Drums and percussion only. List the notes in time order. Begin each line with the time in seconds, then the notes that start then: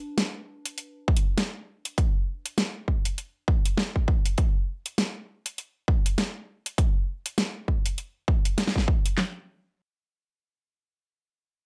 0.18 snare, closed hi-hat
0.66 closed hi-hat
0.78 closed hi-hat
1.08 kick
1.17 closed hi-hat
1.38 snare, closed hi-hat
1.85 closed hi-hat
1.98 kick, closed hi-hat
2.46 closed hi-hat
2.58 snare, closed hi-hat
2.88 kick
3.05 closed hi-hat
3.18 closed hi-hat
3.48 kick
3.65 closed hi-hat
3.77 snare
3.96 kick
4.08 kick
4.26 closed hi-hat
4.38 kick, closed hi-hat
4.86 closed hi-hat
4.98 snare, closed hi-hat
5.46 closed hi-hat
5.58 closed hi-hat
5.88 kick
6.06 closed hi-hat
6.18 snare, closed hi-hat
6.66 closed hi-hat
6.78 kick, closed hi-hat
7.26 closed hi-hat
7.38 snare, closed hi-hat
7.68 kick
7.86 closed hi-hat
7.98 closed hi-hat
8.28 kick
8.45 closed hi-hat
8.58 snare, closed hi-hat
8.67 snare
8.76 kick, snare
8.88 kick
9.06 closed hi-hat
9.18 snare, clap